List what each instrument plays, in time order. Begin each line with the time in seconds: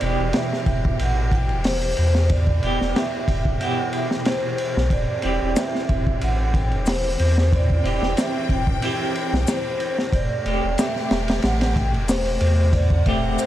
Already playing: string section B2 E3 G4, vibraphone D5
0.01 sub bass E1, clean electric guitar B2 E4 G4, ride
0.20 sub bass E1
0.33 vibraphone E5, snare, ride
0.53 snare
0.66 sub bass E1, kick, ride
0.85 kick
0.99 sub bass A1, vibraphone F#5, ride
1.32 vibraphone G5, kick, ride
1.49 sub bass E1, ride
1.64 vibraphone C5, snare, open hi-hat
1.82 ride
1.97 sub bass E2, ride
2.15 snare
2.29 vibraphone D5, kick, ride
2.47 kick
2.62 sub bass E1, clean electric guitar B3 E4 G4, ride
2.81 sub bass E1, snare
2.96 vibraphone E5, snare, ride
3.28 sub bass E1, kick, ride
3.45 kick
3.60 clean electric guitar B2 E4 G4, vibraphone F#5, ride
3.93 vibraphone E5, ride
4.11 snare
4.25 vibraphone C5, snare, ride
4.58 ride
4.77 sub bass B1, snare
4.90 sub bass E1, string section E3 C4, vibraphone D5, kick, ride
5.22 sub bass E1, clean electric guitar C4 E4 G4, ride
5.43 sub bass E1
5.56 vibraphone E5, snare, ride, maracas
5.75 snare
5.89 sub bass E1, kick, ride
6.07 kick
6.21 sub bass A1, vibraphone F#5, ride
6.54 vibraphone G5, kick, ride
6.71 sub bass E1, ride
6.86 vibraphone C5, snare, open hi-hat, maracas
7.04 ride
7.19 sub bass E2, ride
7.38 snare
7.50 string section G5, kick, ride
7.56 vibraphone D5
7.70 kick
7.84 sub bass E1, clean electric guitar C4 E4 G4, ride
8.02 sub bass E1, snare
8.17 vibraphone E5, snare, ride, maracas
8.49 sub bass E1, vibraphone G5, kick, ride
8.67 kick
8.82 clean electric guitar C4 E4 G4, ride
9.15 ride
9.33 sub bass B1, snare
9.47 vibraphone C5, snare, ride, maracas
9.80 ride
9.99 snare
10.12 sub bass E1, string section C3 A3 G4, vibraphone D5, kick, ride
10.45 sub bass E1, clean electric guitar A3 C4 G4, ride
10.64 sub bass E1
10.78 vibraphone E5, snare, ride, maracas
10.96 snare
11.11 sub bass E1, snare, ride
11.28 snare, ride
11.42 sub bass A1, vibraphone F#5, snare, ride
11.61 snare, ride
11.76 vibraphone G5, kick, ride
11.94 sub bass E1, ride
12.08 vibraphone C5, snare, open hi-hat, maracas
12.26 ride
12.41 sub bass E2, ride
12.73 vibraphone D5, string section F#5, kick, ride
12.90 kick
13.06 sub bass E1, clean electric guitar A3 C4 G4, vibraphone E5, kick, ride
13.24 sub bass E1
13.39 vibraphone C5, ride, maracas